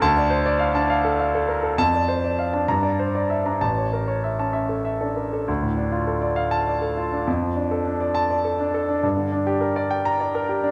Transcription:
0.01 1.73 D2 medium
0.01 0.26 A5 medium
0.16 0.40 D5 medium
0.30 0.46 C5 medium
0.46 0.70 D5 medium
0.59 0.84 F5 medium
0.75 0.99 D4 medium
0.75 0.99 A5 medium
0.90 1.14 F5 medium
1.05 1.28 A4 medium
1.19 1.43 F5 medium
1.35 1.58 A4 medium
1.48 1.63 A#4 medium
1.63 1.78 A4 medium
1.78 2.65 F2 medium
1.78 2.02 A5 medium
1.93 2.17 D5 medium
2.08 2.23 C5 soft
2.24 2.48 D5 medium
2.39 2.63 F5 medium
2.53 2.68 D4 medium
2.53 2.68 A5 medium
2.68 3.58 G2 medium
2.68 2.92 A#5 medium
2.83 3.07 D5 medium
2.99 3.14 C5 soft
3.15 3.39 D5 medium
3.30 3.55 E5 soft
3.46 3.61 D4 soft
3.46 3.61 A#5 medium
3.61 5.44 A1 medium
3.61 3.87 A5 medium
3.78 4.03 C#5 soft
3.93 4.09 A#4 soft
4.08 4.33 C#5 soft
4.24 4.49 E5 soft
4.39 4.64 C#4 soft
4.39 4.64 A5 medium
4.53 4.79 E5 medium
4.69 4.95 A4 soft
4.85 5.11 E5 soft
5.01 5.17 D4 soft
5.01 5.27 A4 soft
5.16 5.33 A#4 soft
5.33 5.48 A4 medium
5.48 7.23 D2 medium
5.63 5.87 A2 soft
5.77 6.01 D4 soft
5.92 6.16 F4 medium
6.07 6.31 A4 soft
6.22 6.46 D5 medium
6.36 6.61 F5 medium
6.51 6.76 A5 medium
6.67 6.91 D5 soft
6.82 7.06 A4 medium
6.97 7.21 F4 medium
7.13 7.27 D4 medium
7.27 9.00 F2 medium
7.42 7.66 F3 soft
7.56 7.80 D4 soft
7.71 7.95 A4 medium
7.85 8.10 D4 soft
8.00 8.25 D5 medium
8.15 8.39 A5 medium
8.30 8.54 D5 medium
8.45 8.69 A4 medium
8.59 8.83 D4 medium
8.74 8.98 A4 medium
8.89 9.03 D4 medium
9.03 10.71 G2 medium
9.17 9.41 D3 soft
9.32 9.55 D4 medium
9.47 9.70 G4 medium
9.61 9.84 A#4 medium
9.76 9.99 D5 medium
9.91 10.13 G5 medium
10.05 10.27 A#5 medium
10.20 10.42 D5 medium
10.35 10.57 A#4 medium
10.49 10.71 G4 medium
10.64 10.71 D4 medium

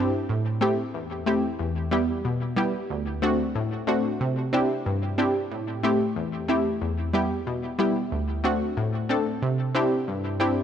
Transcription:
0.00 0.14 G2 medium
0.00 0.11 C4 medium
0.00 0.11 D4 medium
0.00 0.11 E4 medium
0.00 0.12 G4 loud
0.29 0.79 A2 medium
0.61 0.76 A3 medium
0.61 0.76 C4 medium
0.61 0.76 E4 medium
0.61 0.77 G4 loud
0.94 1.44 E2 medium
1.26 1.41 A3 medium
1.26 1.42 C4 medium
1.26 1.42 E4 medium
1.26 1.42 G4 medium
1.59 2.10 E2 medium
1.91 2.07 G3 medium
1.91 2.07 B3 medium
1.91 2.07 E4 medium
1.91 2.07 G4 medium
2.25 2.75 B2 medium
2.56 2.72 G3 medium
2.56 2.72 B3 medium
2.56 2.72 E4 medium
2.56 2.72 G4 medium
2.90 3.40 D2 medium
3.22 3.37 A3 medium
3.22 3.37 C4 medium
3.22 3.38 D4 medium
3.22 3.38 F#4 loud
3.55 4.05 A2 medium
3.87 4.02 A3 medium
3.87 4.02 C4 medium
3.87 4.03 D4 medium
3.87 4.03 F#4 medium
4.21 4.71 C3 medium
4.53 4.68 C4 medium
4.53 4.68 D4 medium
4.53 4.68 E4 medium
4.53 4.68 G4 loud
4.86 5.36 G2 medium
5.18 5.33 C4 medium
5.18 5.33 D4 medium
5.18 5.33 E4 medium
5.18 5.34 G4 loud
5.51 6.01 A2 medium
5.83 5.98 A3 medium
5.83 5.98 C4 medium
5.83 5.99 E4 medium
5.83 5.99 G4 loud
6.16 6.66 E2 medium
6.48 6.63 A3 medium
6.48 6.63 C4 medium
6.48 6.64 E4 medium
6.48 6.64 G4 medium
6.82 7.31 E2 medium
7.13 7.28 G3 medium
7.13 7.29 B3 medium
7.13 7.29 E4 medium
7.13 7.29 G4 loud
7.47 7.97 B2 medium
7.79 7.94 G3 medium
7.79 7.94 B3 medium
7.79 7.94 E4 medium
7.79 7.94 G4 loud
8.12 8.62 D2 medium
8.44 8.59 A3 medium
8.44 8.59 C4 medium
8.44 8.59 D4 medium
8.44 8.59 F#4 loud
8.77 9.27 A2 medium
9.09 9.24 A3 medium
9.09 9.24 C4 medium
9.09 9.25 D4 medium
9.09 9.25 A4 loud
9.42 9.92 C3 medium
9.75 9.89 C4 medium
9.75 9.90 D4 medium
9.75 9.90 E4 medium
9.75 9.90 G4 loud
10.08 10.58 G2 medium
10.40 10.55 C4 medium
10.40 10.55 D4 medium
10.40 10.55 E4 medium
10.40 10.55 G4 medium

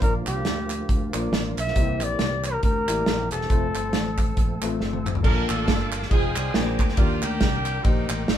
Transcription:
0.00 0.23 A#1 medium
0.00 0.66 A#2 medium
0.00 1.74 D3 medium
0.00 1.74 F3 medium
0.00 0.54 A#3 medium
0.00 3.46 A#3 medium
0.00 0.55 D4 medium
0.00 0.55 F4 medium
0.00 1.74 F4 medium
0.00 0.14 A#4 medium
0.00 0.55 D5 medium
0.00 kick loud
0.00 closed hi-hat medium
0.26 0.45 C2 medium
0.26 1.10 G4 medium
0.26 clap medium
0.26 closed hi-hat medium
0.45 0.82 D2 medium
0.45 snare medium
0.45 closed hi-hat medium
0.70 clap medium
0.70 closed hi-hat medium
0.89 1.10 D2 medium
0.89 kick loud
0.89 closed hi-hat medium
1.13 1.30 A#1 medium
1.13 1.52 A#3 medium
1.13 1.52 D4 medium
1.13 1.53 F4 medium
1.13 1.19 C5 medium
1.13 clap loud
1.13 closed hi-hat medium
1.20 1.55 D5 medium
1.32 1.53 A1 medium
1.32 snare loud
1.32 closed hi-hat medium
1.57 1.73 B1 medium
1.57 2.05 E5 loud
1.57 clap medium
1.57 closed hi-hat medium
1.68 snare soft
1.75 2.01 C2 medium
1.75 2.40 C3 medium
1.75 3.48 E3 medium
1.75 2.29 A#3 medium
1.75 5.20 C4 medium
1.75 1.82 D#4 medium
1.75 3.48 G4 medium
1.75 2.29 G4 medium
1.75 2.29 C5 medium
1.75 kick loud
1.75 closed hi-hat medium
1.81 2.32 E4 medium
2.01 2.16 A#1 medium
2.01 2.46 D5 medium
2.01 clap medium
2.01 closed hi-hat medium
2.19 2.56 C2 medium
2.19 snare medium
2.19 closed hi-hat medium
2.44 2.63 A#4 medium
2.44 clap medium
2.44 closed hi-hat medium
2.63 2.84 D2 medium
2.63 3.28 A#4 medium
2.63 kick loud
2.63 closed hi-hat medium
2.88 3.04 A1 medium
2.88 3.26 A#3 medium
2.88 3.26 E4 medium
2.88 3.27 G4 medium
2.88 3.27 D5 medium
2.88 clap loud
2.88 closed hi-hat medium
3.06 3.28 A#1 medium
3.06 snare loud
3.06 closed hi-hat medium
3.31 3.47 E1 medium
3.31 4.77 A4 medium
3.31 clap medium
3.31 closed hi-hat medium
3.41 snare soft
3.50 3.71 F1 medium
3.50 5.23 F3 medium
3.50 4.03 A3 medium
3.50 5.23 A3 medium
3.50 4.03 C4 medium
3.50 4.04 F4 medium
3.50 5.23 A4 medium
3.50 4.04 C5 medium
3.50 kick loud
3.50 closed hi-hat medium
3.75 3.91 G1 medium
3.75 clap medium
3.75 closed hi-hat medium
3.93 4.31 A1 medium
3.93 snare loud
3.93 closed hi-hat medium
4.18 kick medium
4.18 clap medium
4.18 closed hi-hat medium
4.37 4.58 A#1 medium
4.37 kick loud
4.37 closed hi-hat medium
4.62 4.78 A1 medium
4.62 5.00 A3 medium
4.62 5.01 C4 medium
4.62 5.01 F4 medium
4.62 4.67 B4 medium
4.62 clap loud
4.62 closed hi-hat medium
4.68 5.04 C5 medium
4.80 5.17 G1 medium
4.80 snare soft
4.93 high tom medium
5.06 clap medium
5.06 mid tom medium
5.15 floor tom medium
5.23 5.46 A#1 loud
5.23 5.88 A#2 medium
5.23 6.11 A#3 medium
5.23 5.77 D4 medium
5.23 5.48 D4 medium
5.23 5.77 F4 medium
5.23 5.49 F4 medium
5.23 5.30 A4 medium
5.23 5.47 A#4 loud
5.23 6.54 F5 medium
5.23 6.10 A5 medium
5.23 6.11 D6 medium
5.23 kick loud
5.23 crash loud
5.30 5.80 A#3 medium
5.49 5.65 A1 medium
5.49 6.07 D4 medium
5.49 6.07 F4 medium
5.49 5.92 A4 loud
5.49 clap medium
5.49 ride medium
5.68 6.05 G1 medium
5.68 kick medium
5.68 snare loud
5.68 ride medium
5.92 clap medium
5.92 ride medium
6.02 snare soft
6.10 6.32 F1 loud
6.10 6.54 G#3 medium
6.10 6.36 C4 medium
6.10 6.54 D#4 medium
6.10 6.52 D#4 medium
6.10 6.55 F4 medium
6.10 6.34 G#4 loud
6.10 6.54 C5 medium
6.10 6.98 C5 medium
6.10 6.98 G#5 medium
6.10 6.55 D#6 medium
6.10 kick loud
6.10 ride medium
6.36 6.52 C2 medium
6.36 6.95 C4 medium
6.36 6.95 D4 medium
6.36 6.77 G#4 loud
6.36 clap loud
6.36 ride medium
6.54 6.76 A#1 loud
6.54 6.95 A#2 medium
6.54 6.90 A#3 medium
6.54 6.90 D4 medium
6.54 6.91 G#4 medium
6.54 6.91 C5 medium
6.54 6.98 A#5 medium
6.54 6.98 D6 medium
6.54 snare loud
6.54 ride medium
6.79 6.95 D2 medium
6.79 kick medium
6.79 clap medium
6.79 ride medium
6.89 snare soft
6.97 7.19 D#2 medium
6.97 7.62 D#3 medium
6.97 7.51 A#3 medium
6.97 7.22 A#3 medium
6.97 7.51 D4 medium
6.97 7.22 D4 medium
6.97 7.21 F4 loud
6.97 7.51 G4 medium
6.97 8.38 A#4 medium
6.97 7.51 D5 medium
6.97 8.38 G5 medium
6.97 kick loud
6.97 ride medium
7.22 7.38 D2 medium
7.22 7.83 A#3 medium
7.22 8.06 D4 medium
7.22 7.84 G4 loud
7.22 clap medium
7.22 ride medium
7.40 7.78 C2 medium
7.40 kick medium
7.40 snare loud
7.40 ride medium
7.66 clap medium
7.66 ride medium
7.83 8.06 A#1 medium
7.83 8.38 G3 medium
7.83 8.38 A#3 medium
7.83 8.38 D#4 medium
7.83 8.38 G4 medium
7.83 8.38 C5 medium
7.83 kick loud
7.83 ride medium
8.09 8.25 A1 medium
8.09 clap loud
8.09 ride medium
8.27 8.38 G1 medium
8.27 snare loud
8.27 ride medium

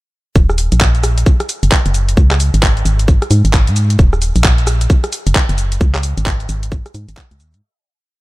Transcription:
0.36 0.69 D#1 loud
0.36 kick loud
0.36 shaker soft
0.49 cross-stick medium
0.49 shaker soft
0.58 open hi-hat loud
0.58 shaker medium
0.72 1.24 A#1 loud
0.72 closed hi-hat medium
0.72 shaker soft
0.81 kick loud
0.81 clap loud
0.81 shaker soft
0.95 closed hi-hat soft
0.95 shaker soft
1.04 cross-stick medium
1.04 open hi-hat loud
1.04 shaker medium
1.18 closed hi-hat medium
1.18 shaker soft
1.26 kick loud
1.26 shaker soft
1.40 cross-stick medium
1.40 closed hi-hat soft
1.40 shaker soft
1.49 open hi-hat loud
1.49 shaker medium
1.63 1.70 F#1 medium
1.63 closed hi-hat medium
1.63 shaker soft
1.72 kick loud
1.72 clap loud
1.72 shaker soft
1.86 2.15 F#1 loud
1.86 closed hi-hat medium
1.86 shaker soft
1.94 open hi-hat loud
1.94 shaker medium
2.09 closed hi-hat medium
2.09 shaker soft
2.17 2.50 C#2 loud
2.17 kick loud
2.17 shaker soft
2.31 cross-stick medium
2.31 clap medium
2.31 shaker soft
2.40 open hi-hat loud
2.40 shaker medium
2.54 2.83 G#1 loud
2.54 closed hi-hat medium
2.54 shaker soft
2.63 kick loud
2.63 clap loud
2.63 shaker soft
2.77 closed hi-hat soft
2.77 shaker soft
2.85 3.18 G#1 loud
2.85 open hi-hat medium
2.85 shaker medium
2.99 closed hi-hat medium
2.99 shaker soft
3.08 kick loud
3.08 shaker soft
3.22 cross-stick medium
3.22 closed hi-hat soft
3.22 shaker soft
3.31 3.42 G#2 loud
3.31 open hi-hat loud
3.31 shaker medium
3.45 3.69 G#1 loud
3.45 closed hi-hat medium
3.45 shaker soft
3.54 kick loud
3.54 clap loud
3.54 shaker soft
3.67 3.97 G#2 loud
3.67 closed hi-hat soft
3.67 shaker soft
3.76 open hi-hat medium
3.76 shaker medium
3.90 closed hi-hat medium
3.90 shaker soft
3.99 4.32 D#1 loud
3.99 kick loud
3.99 shaker soft
4.13 cross-stick medium
4.13 shaker soft
4.22 open hi-hat loud
4.22 shaker medium
4.36 4.88 A#1 loud
4.36 closed hi-hat medium
4.36 shaker soft
4.44 kick loud
4.44 clap loud
4.44 shaker soft
4.58 closed hi-hat soft
4.58 shaker soft
4.67 cross-stick medium
4.67 open hi-hat loud
4.67 shaker medium
4.81 closed hi-hat medium
4.81 shaker soft
4.90 kick loud
4.90 shaker soft
5.04 cross-stick medium
5.04 closed hi-hat soft
5.04 shaker soft
5.13 open hi-hat loud
5.13 shaker medium
5.27 5.34 F#1 medium
5.27 closed hi-hat medium
5.27 shaker soft
5.35 kick loud
5.35 clap loud
5.35 shaker soft
5.49 5.79 F#1 loud
5.49 closed hi-hat soft
5.49 shaker soft
5.58 open hi-hat medium
5.58 shaker medium
5.72 closed hi-hat medium
5.72 shaker soft
5.81 6.14 C#2 loud
5.81 kick loud
5.81 shaker soft
5.95 cross-stick medium
5.95 clap medium
5.95 shaker soft
6.03 open hi-hat loud
6.03 shaker medium
6.18 6.47 G#1 loud
6.18 closed hi-hat medium
6.18 shaker soft
6.26 kick loud
6.26 clap loud
6.26 shaker soft
6.40 closed hi-hat soft
6.40 shaker soft
6.49 6.82 G#1 loud
6.49 open hi-hat medium
6.49 shaker medium
6.63 closed hi-hat medium
6.63 shaker soft
6.72 kick loud
6.72 shaker soft
6.86 cross-stick medium
6.86 closed hi-hat soft
6.86 shaker soft
6.95 7.06 G#2 loud
6.95 open hi-hat loud
6.95 shaker medium
7.09 7.16 G#1 medium
7.09 closed hi-hat medium
7.09 shaker soft
7.17 kick loud
7.17 clap loud
7.17 shaker soft
7.31 7.42 C#2 medium
7.31 closed hi-hat soft
7.31 shaker soft
7.40 7.56 D#2 loud
7.40 open hi-hat medium
7.40 shaker medium
7.54 7.61 G#2 loud
7.54 closed hi-hat medium
7.54 shaker soft

